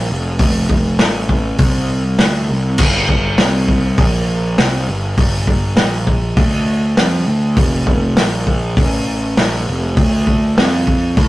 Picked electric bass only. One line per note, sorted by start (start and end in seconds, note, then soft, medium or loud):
0.10 0.39 F1 medium
0.40 0.97 F1 loud
1.01 1.58 A1 medium
1.59 2.17 C2 loud
2.21 2.49 D2 medium
2.49 2.78 C2 medium
2.79 3.37 G1 loud
3.38 3.96 C2 loud
3.98 4.56 A#1 loud
4.59 4.87 C2 medium
4.88 5.17 G1 medium
5.18 5.75 G1 loud
5.76 6.34 A#1 loud
6.37 6.95 D2 loud
6.97 7.26 F2 medium
7.27 7.56 D2 loud
7.57 8.15 F1 loud
8.17 8.75 A#1 loud
8.77 9.35 A1 loud
9.37 9.66 A#1 medium
9.68 9.96 F1 medium
9.98 10.55 D2 loud
10.57 11.15 F2 loud
11.17 11.28 A2 loud